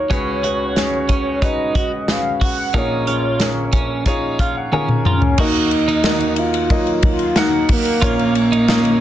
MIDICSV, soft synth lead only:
0, 0, Header, 1, 2, 480
1, 0, Start_track
1, 0, Key_signature, -6, "minor"
1, 0, Tempo, 659268
1, 80, Time_signature, 4, 2, 24, 8
1, 6556, End_track
2, 0, Start_track
2, 0, Title_t, "Soft synth lead"
2, 0, Program_c, 0, 80
2, 0, Note_on_c, 0, 73, 113
2, 1054, Note_on_c, 0, 75, 101
2, 1065, Note_off_c, 0, 73, 0
2, 1536, Note_on_c, 0, 77, 93
2, 1547, Note_off_c, 0, 75, 0
2, 1768, Note_off_c, 0, 77, 0
2, 1774, Note_on_c, 0, 78, 100
2, 2018, Note_on_c, 0, 73, 89
2, 2029, Note_off_c, 0, 78, 0
2, 3449, Note_off_c, 0, 73, 0
2, 3690, Note_on_c, 0, 61, 91
2, 3930, Note_on_c, 0, 63, 114
2, 3941, Note_off_c, 0, 61, 0
2, 4651, Note_on_c, 0, 65, 98
2, 4662, Note_off_c, 0, 63, 0
2, 5126, Note_off_c, 0, 65, 0
2, 5130, Note_on_c, 0, 65, 102
2, 5375, Note_on_c, 0, 63, 99
2, 5386, Note_off_c, 0, 65, 0
2, 5608, Note_off_c, 0, 63, 0
2, 5620, Note_on_c, 0, 58, 115
2, 6556, Note_off_c, 0, 58, 0
2, 6556, End_track
0, 0, End_of_file